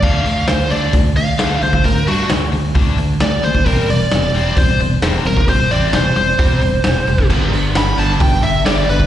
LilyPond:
<<
  \new Staff \with { instrumentName = "Lead electric guitar" } { \time 4/4 \key c \major \tempo 4 = 132 f''4 c''8 d''8 r8 f''4 c''8 | bes'8 fis'8 r2 d''8 c''8 | bes'8 d''4. c''8 r4 bes'8 | c''8 d''8 c''8 c''2~ c''8 |
r4 b''8 a''8 g''8 e''8 d''8 b'8 | }
  \new Staff \with { instrumentName = "Overdriven electric guitar" } { \clef bass \time 4/4 \key c \major r1 | r1 | r1 | r1 |
<g, d g b d'>2.~ <g, d g b d'>8 <g, d g b d'>8 | }
  \new Staff \with { instrumentName = "Overdriven electric guitar" } { \clef bass \time 4/4 \key c \major <d a d'>8 <d a>8 <d a>8 <d a d'>8 <d a>8 <d a>8 <d a d'>8 <d a>8 | <d a>8 <d a d'>8 <d a>8 <d a>8 <d a d'>8 <d a>8 <d a>8 <d a>8 | <c g c'>8 <c g>8 <c g>8 <c g c'>8 <c g>8 <c g>8 <c g c'>8 <c g>8 | <c g>8 <c g c'>8 <c g>8 <c g>8 <c g c'>8 <c g>8 <c g>8 <c g>8 |
<g, d g>8 <g, d>8 <g, d>8 <g, d g>8 <g, d>8 <g, d>8 <g, d g>8 <g, d>8 | }
  \new Staff \with { instrumentName = "Overdriven electric guitar" } { \clef bass \time 4/4 \key c \major r1 | r1 | r1 | r1 |
<g, d g>8 <g, d>8 <g, d>8 <g, d g>8 <g, d>8 <g, d>8 <g, d g>8 <g, d>8 | }
  \new Staff \with { instrumentName = "Fingered electric bass" } { \clef bass \time 4/4 \key c \major d,8 d,8 d,8 d,8 d,8 d,8 d,8 d,8 | d,8 g,8 d,8 d,8 d,8 d,8 d,8 ees,8 | e,,8 e,,8 e,,8 e,,8 e,,8 e,,8 e,,8 e,,8 | e,,8 a,,8 e,,8 e,,8 e,,8 e,,8 e,,8 f,,8 |
g,,8 g,,8 g,,8 g,,8 g,,8 g,,8 g,,8 g,,8 | }
  \new DrumStaff \with { instrumentName = "Drums" } \drummode { \time 4/4 <cymc bd>8 hho8 <hho sn>8 hho8 <hho bd>8 hho8 <hho sn>8 hho16 bd16 | <hho bd>8 hho8 <hho sn>8 hho8 <hho bd>8 hho8 <hho sn>8 hho16 bd16 | <hho bd>8 hho8 <hho sn>8 hho8 <hho bd>8 hho8 <hho sn>8 hho16 bd16 | <hho bd>8 hho8 <hho sn>8 hho8 <hho bd>8 hho8 <hho sn>8 hho16 bd16 |
<cymc bd>8 hho8 <hho sn>8 hho8 <hho bd>8 hho8 <hho sn>8 hho16 bd16 | }
>>